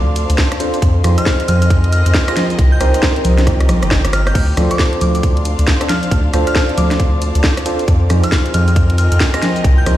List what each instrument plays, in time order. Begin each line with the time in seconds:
Already playing: sub bass D2, synth stab C4 D4 F4 A4 C5, string section D4 C5 F5, ambient pad D5 F5 A5 C6, synth bell D6
0.16 open hi-hat, shaker
0.30 sub bass D2, closed hi-hat, shaker
0.38 kick, snare, shaker
0.52 cross-stick, closed hi-hat
0.60 synth stab C4 D4 F4 A4 C5, open hi-hat, shaker
0.74 closed hi-hat, shaker
0.82 sub bass F2, string section C4, ambient pad D#5 G5 G#5, kick, closed hi-hat, shaker
0.89 string section F4
0.99 string section D#5
1.04 sub bass F2, synth stab C4 D#4 F4 G#4 C5, string section A#4, cross-stick, open hi-hat, high conga, shaker
1.18 synth bell F6, cross-stick, closed hi-hat, shaker
1.26 kick, snare, shaker
1.40 closed hi-hat
1.48 sub bass F2, synth bell F6, open hi-hat, high conga, shaker
1.62 synth bell F6, closed hi-hat, shaker
1.70 kick, closed hi-hat, shaker
1.84 open hi-hat
1.92 synth bell F6, open hi-hat, shaker
2.06 sub bass F2, synth bell F6, closed hi-hat, shaker
2.14 kick, snare, shaker
2.28 synth stab C4 D#4 F4 G#4 C5, synth bell A#6, cross-stick, closed hi-hat
2.37 synth bell A#6, snare, open hi-hat, high conga, shaker
2.50 closed hi-hat, shaker
2.59 sub bass C2, ambient pad G5 A#5 D6, kick, closed hi-hat, shaker
2.72 synth bell G6
2.81 sub bass C2, synth stab C4 D#4 G4 A#4 C5, synth bell G6, cross-stick, open hi-hat, shaker
2.94 cross-stick, closed hi-hat, shaker
3.03 kick, snare
3.16 closed hi-hat
3.25 sub bass C2, open hi-hat, high conga, shaker
3.38 snare, closed hi-hat, shaker
3.47 kick, cross-stick, closed hi-hat, shaker
3.60 cross-stick, open hi-hat
3.69 sub bass A#1, cross-stick, open hi-hat, high conga, shaker
3.82 sub bass G1, cross-stick, closed hi-hat, shaker
3.91 kick, cross-stick, snare, shaker
4.04 sub bass G1, cross-stick, closed hi-hat
4.13 synth bell F6, cross-stick, open hi-hat, shaker
4.27 synth bell G6, cross-stick, closed hi-hat, shaker
4.35 sub bass D2, string section D4, ambient pad D5 F5 A5 C6, synth bell G6, kick, closed hi-hat, crash, shaker
4.50 string section C5
4.57 sub bass D2, synth stab C4 D4 F4 A4 C5, cross-stick, open hi-hat, high conga, shaker
4.71 string section F5, synth bell D6, cross-stick, closed hi-hat, shaker
4.79 kick, snare, shaker
4.93 closed hi-hat
5.01 sub bass D2, synth bell D6, open hi-hat, high conga, shaker
5.15 synth bell D6, closed hi-hat, shaker
5.23 kick, closed hi-hat, shaker
5.37 open hi-hat
5.45 open hi-hat, shaker
5.59 sub bass D2, closed hi-hat, shaker
5.67 kick, snare
5.81 synth stab C4 D4 F4 A4 C5, cross-stick, closed hi-hat
5.89 synth bell F6, snare, open hi-hat, high conga, shaker
6.03 closed hi-hat, shaker
6.11 sub bass D2, ambient pad D6, kick, closed hi-hat, shaker
6.33 sub bass D2, synth stab C4 D4 F4 A4 C5, cross-stick, open hi-hat, shaker
6.47 synth bell F6, cross-stick, closed hi-hat, shaker
6.56 synth bell F6, kick, snare, shaker
6.69 closed hi-hat
6.78 sub bass D2, synth bell D6, open hi-hat, high conga, shaker
6.91 snare, closed hi-hat, shaker
7.00 kick, closed hi-hat, shaker
7.22 open hi-hat, shaker
7.35 sub bass D2, closed hi-hat, shaker
7.44 kick, snare, shaker
7.57 cross-stick, closed hi-hat
7.66 synth stab C4 D4 F4 A4 C5, open hi-hat, shaker
7.79 closed hi-hat, shaker
7.88 sub bass F2, string section C4, ambient pad D#5 G5 G#5 C6, kick, closed hi-hat, shaker
7.92 string section F4
7.96 string section A#4
8.10 sub bass F2, synth stab C4 D#4 F4 G#4 C5, cross-stick, open hi-hat, high conga, shaker
8.24 synth bell F6, cross-stick, closed hi-hat, shaker
8.32 kick, snare, shaker
8.46 string section D#5, closed hi-hat
8.54 sub bass F2, synth bell F6, open hi-hat, high conga, shaker
8.68 synth bell F6, closed hi-hat, shaker
8.76 kick, closed hi-hat, shaker
8.90 open hi-hat
8.98 synth bell F6, open hi-hat, shaker
9.12 sub bass F2, synth bell F6, closed hi-hat, shaker
9.20 kick, snare, shaker
9.34 synth stab C4 D#4 F4 G#4 C5, synth bell A#6, cross-stick, closed hi-hat
9.42 synth bell A#6, snare, open hi-hat, high conga, shaker
9.56 closed hi-hat, shaker
9.64 sub bass C2, ambient pad A#5 D6, kick, closed hi-hat, shaker
9.78 synth bell G6
9.86 sub bass C2, synth stab C4 D#4 G4 A#4 C5, synth bell G6, cross-stick, open hi-hat, high conga, shaker